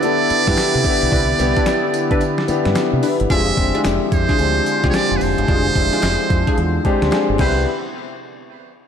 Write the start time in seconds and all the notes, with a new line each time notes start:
Already playing: D3 B3 D4 E4 G4 D5
0.02 B3 D4 E4 A4, closed hi-hat, tambourine
0.30 muted fingered electric bass stroke, closed hi-hat, tambourine
0.47 G2 B3 D4 E4 G4 B4, kick, snare, closed hi-hat
0.57 snare, clap, closed hi-hat, tambourine
0.75 C3
0.85 B3 D4 E4 G4, kick, closed hi-hat, tambourine
1.02 B1, closed hi-hat
1.12 C2 D4 E4 B4, kick, closed hi-hat
1.39 C2 B3 D4 E4 G4, closed hi-hat, tambourine
1.56 D4 E4 B4, kick, closed hi-hat
1.66 snare, clap, closed hi-hat, tambourine
1.94 closed hi-hat, tambourine
2.11 D4 E4 B4, kick, closed hi-hat
2.21 closed hi-hat, tambourine
2.38 snare
2.48 B3 D4 E4 G4, muted fingered electric bass stroke, closed hi-hat, tambourine
2.65 G2, snare, closed hi-hat
2.75 snare, clap, closed hi-hat, tambourine
2.93 C3
3.03 D4 E4 B4, open hi-hat, tambourine
3.20 G1, closed hi-hat
3.30 F1 D3 F3 G#3 C4 D4 F4 G4 G#4 E5, kick, closed hi-hat
3.57 F1 G#3 C4 D4 G4, kick, closed hi-hat, tambourine
3.75 G#3 C4 D4 E4 F4 G#4, closed hi-hat
3.84 F1, snare, clap, closed hi-hat, tambourine
4.12 F2 C5, kick, closed hi-hat, tambourine
4.29 D4 F4 G#4, kick, closed hi-hat
4.39 D2 G#3 C4 D4 G4, closed hi-hat, tambourine
4.66 closed hi-hat, tambourine
4.84 C2 G#3 C4 D4 F4 G4 G#4, kick, snare, closed hi-hat
4.90 C#5, snare, clap, tambourine
4.94 D5, closed hi-hat
5.11 F1
5.17 B4
5.21 F1 C5, open hi-hat, tambourine
5.38 G1, closed hi-hat
5.48 F1 D4 F4 G#4, kick, closed hi-hat
5.76 F1 G#3 C4 D4 E4, kick, closed hi-hat
5.93 D4 F4 G#4, closed hi-hat
6.03 F1, snare, clap, closed hi-hat
6.30 F2, kick, closed hi-hat
6.47 D4 F4 G#4, kick, closed hi-hat
6.58 E2, closed hi-hat
6.85 G#3 C4 D4 G4, kick, closed hi-hat
7.02 D2, snare, closed hi-hat
7.12 G#3 C4 D4 G#4, snare, clap, closed hi-hat
7.29 G1
7.39 C2 C3 B3 C4 D4 E4 G4 B4 C5, kick, clap, crash